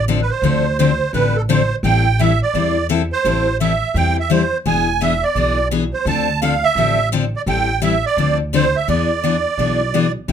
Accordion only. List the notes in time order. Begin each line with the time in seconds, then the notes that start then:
0.22 B4
0.30 C5
0.79 C5
1.14 B4
1.36 A4
1.49 C5
1.85 G5
2.20 E5
2.42 D5
3.13 C5
3.61 E5
3.97 G5
4.20 E5
4.31 C5
4.67 G#5
5.02 E5
5.23 D5
5.94 C5
6.08 A5
6.42 F5
6.64 E5
7.36 D5
7.49 G5
7.83 E5
8.06 D5
8.55 C5
8.76 E5
8.89 D5